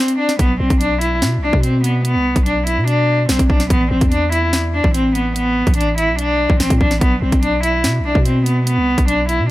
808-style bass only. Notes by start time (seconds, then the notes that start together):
0.39 B1
0.60 B1
0.70 B1
1.22 B2
1.38 B1
1.53 B2
2.15 C2
2.36 B1
2.77 B2
3.29 B1
3.39 B1
3.50 B1
3.70 A1
3.91 A1
4.01 E2
4.84 A1
5.67 A1
6.08 B1
6.50 A1
6.60 A1
6.70 A2
6.81 A1
7.01 B1
7.22 B1
7.32 B1
7.84 B2
8.00 B1
8.15 B2
8.77 C2
8.98 B1
9.39 B2